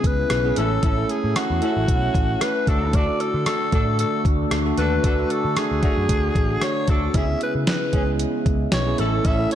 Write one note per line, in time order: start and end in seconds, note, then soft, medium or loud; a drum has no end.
0.00 0.24 C#2 medium
0.00 0.55 C#3 medium
0.00 0.55 G#3 medium
0.00 0.44 B3 medium
0.00 0.55 B3 medium
0.00 0.45 C#4 medium
0.00 0.45 E4 medium
0.00 2.64 E4 medium
0.00 0.46 G#4 medium
0.00 kick medium
0.04 0.60 B4 medium
0.04 closed hi-hat medium
0.30 0.50 B1 medium
0.30 cross-stick medium
0.30 closed hi-hat medium
0.44 0.56 B3 medium
0.44 0.56 C#4 medium
0.44 0.56 E4 medium
0.44 0.57 G#4 medium
0.56 0.77 A1 medium
0.56 0.89 A3 medium
0.56 0.74 A3 medium
0.56 2.65 A3 medium
0.56 0.89 C#4 medium
0.56 2.65 C#4 medium
0.56 0.74 C#4 medium
0.56 0.74 E4 medium
0.56 0.89 E4 medium
0.56 0.74 A4 medium
0.56 0.89 A4 medium
0.56 1.12 A4 medium
0.56 closed hi-hat medium
0.83 1.03 A1 loud
0.83 0.92 A3 medium
0.83 0.93 C#4 medium
0.83 0.92 E4 medium
0.83 0.92 A4 medium
0.83 kick loud
0.83 closed hi-hat medium
0.97 1.44 A3 medium
0.97 1.44 C#4 medium
0.97 1.44 E4 medium
0.97 1.45 A4 medium
1.09 1.38 G#4 medium
1.09 closed hi-hat medium
1.24 1.33 A2 medium
1.36 2.43 F#4 medium
1.36 cross-stick loud
1.36 closed hi-hat medium
1.50 1.59 E2 medium
1.62 2.38 A3 medium
1.62 1.71 A3 medium
1.62 2.38 C#4 medium
1.62 1.71 C#4 medium
1.62 1.71 E4 medium
1.62 2.38 E4 medium
1.62 1.71 A4 loud
1.62 2.38 A4 medium
1.62 closed hi-hat medium
1.77 1.85 A1 medium
1.88 2.08 B1 medium
1.88 kick medium
1.88 closed hi-hat medium
2.15 2.34 A1 medium
2.15 kick medium
2.15 closed hi-hat medium
2.41 2.70 B4 medium
2.41 cross-stick medium
2.41 closed hi-hat medium
2.66 3.07 D2 loud
2.66 7.10 D3 medium
2.66 7.10 A3 medium
2.66 3.52 A3 medium
2.66 2.92 A3 medium
2.66 7.10 D4 medium
2.66 3.52 D4 medium
2.66 2.92 D4 medium
2.66 7.10 F#4 medium
2.66 2.92 F#4 medium
2.66 3.52 F#4 medium
2.66 2.92 A4 loud
2.66 3.52 A4 medium
2.66 2.97 A4 medium
2.66 kick medium
2.66 closed hi-hat medium
2.93 3.03 A3 medium
2.93 3.03 D4 medium
2.93 3.03 F#4 medium
2.93 3.03 A4 loud
2.93 3.22 D5 loud
2.93 kick loud
2.93 closed hi-hat medium
3.20 3.46 A4 medium
3.20 closed hi-hat medium
3.34 3.43 D3 medium
3.46 3.96 A4 loud
3.46 cross-stick loud
3.46 closed hi-hat medium
3.72 4.03 A2 medium
3.72 4.40 A3 medium
3.72 3.82 A3 medium
3.72 4.40 D4 medium
3.72 3.82 D4 medium
3.72 3.82 F#4 medium
3.72 4.40 F#4 medium
3.72 3.82 A4 loud
3.72 4.40 A4 medium
3.72 kick medium
3.72 closed hi-hat medium
3.99 4.24 A4 medium
3.99 closed hi-hat medium
4.25 4.45 D2 medium
4.25 kick medium
4.25 closed hi-hat medium
4.51 4.71 D2 medium
4.51 cross-stick medium
4.51 closed hi-hat medium
4.65 4.94 A3 medium
4.65 4.94 D4 medium
4.65 4.94 F#4 medium
4.65 4.94 A4 medium
4.78 4.97 D#2 medium
4.78 4.95 A3 medium
4.78 4.95 D4 medium
4.78 4.95 F#4 medium
4.78 4.95 A4 medium
4.78 5.33 B4 medium
4.78 closed hi-hat medium
5.03 5.24 D2 medium
5.03 5.14 A3 medium
5.03 5.13 A3 medium
5.03 5.14 D4 medium
5.03 5.13 D4 medium
5.03 5.13 F#4 medium
5.03 5.15 F#4 medium
5.03 5.13 A4 loud
5.03 5.15 A4 medium
5.03 kick loud
5.03 closed hi-hat medium
5.18 5.65 A3 medium
5.18 5.65 D4 medium
5.18 5.65 F#4 medium
5.18 5.66 A4 medium
5.30 5.57 A4 medium
5.30 closed hi-hat medium
5.45 5.54 D3 medium
5.56 6.65 G#4 medium
5.56 cross-stick loud
5.56 closed hi-hat medium
5.71 5.80 D2 medium
5.82 5.92 F#3 medium
5.82 6.59 A3 medium
5.82 5.92 A3 medium
5.82 5.92 D4 medium
5.82 6.59 D4 medium
5.82 5.92 F#4 medium
5.82 6.59 F#4 medium
5.82 kick medium
5.82 closed hi-hat medium
5.97 6.06 F#2 medium
6.09 6.29 D2 medium
6.09 kick medium
6.09 closed hi-hat medium
6.35 6.55 A1 medium
6.35 kick medium
6.35 closed hi-hat medium
6.61 6.91 C#5 medium
6.61 cross-stick medium
6.61 closed hi-hat medium
6.88 7.08 D2 medium
6.88 7.05 A3 medium
6.88 7.05 D4 medium
6.88 7.05 F#4 medium
6.88 7.05 A4 medium
6.88 7.18 A4 medium
6.88 kick medium
6.88 closed hi-hat medium
7.14 7.34 C#2 loud
7.14 8.97 C#3 medium
7.14 7.24 G#3 medium
7.14 8.97 G#3 medium
7.14 7.71 B3 medium
7.14 8.97 B3 medium
7.14 7.71 C#4 medium
7.14 7.24 C#4 medium
7.14 7.72 E4 medium
7.14 9.55 E4 medium
7.14 7.24 E4 medium
7.14 7.24 G#4 loud
7.14 7.72 G#4 medium
7.14 7.42 E5 loud
7.14 kick loud
7.14 closed hi-hat medium
7.41 7.54 B4 medium
7.41 closed hi-hat medium
7.55 7.64 C#3 medium
7.67 8.17 B4 medium
7.67 snare loud
7.67 closed hi-hat medium
7.93 8.24 C#2 medium
7.93 8.03 G#3 medium
7.93 8.61 B3 medium
7.93 8.61 C#4 medium
7.93 8.03 C#4 medium
7.93 8.61 E4 medium
7.93 8.03 E4 medium
7.93 8.61 G#4 medium
7.93 8.03 G#4 medium
7.93 kick medium
7.93 closed hi-hat medium
8.19 closed hi-hat medium
8.46 8.66 C#2 medium
8.46 kick medium
8.46 closed hi-hat medium
8.72 8.92 B1 medium
8.72 9.01 C#5 medium
8.72 snare loud
8.72 closed hi-hat medium
8.86 8.98 B3 medium
8.86 8.97 C#4 medium
8.86 8.98 E4 medium
8.86 8.99 G#4 medium
8.98 9.19 A1 medium
8.98 9.31 A3 medium
8.98 9.16 A3 medium
8.98 9.55 A3 medium
8.98 9.31 C#4 medium
8.98 9.55 C#4 medium
8.98 9.16 C#4 medium
8.98 9.31 E4 medium
8.98 9.16 E4 medium
8.98 9.16 A4 medium
8.98 9.31 A4 medium
8.98 9.28 A4 medium
8.98 closed hi-hat medium
9.25 9.45 A1 loud
9.25 9.34 A3 medium
9.25 9.34 C#4 medium
9.25 9.34 E4 medium
9.25 9.34 A4 loud
9.25 9.52 E5 loud
9.25 kick loud
9.25 closed hi-hat medium
9.38 9.55 A3 medium
9.38 9.55 C#4 medium
9.38 9.55 E4 medium
9.38 9.55 A4 medium
9.51 closed hi-hat medium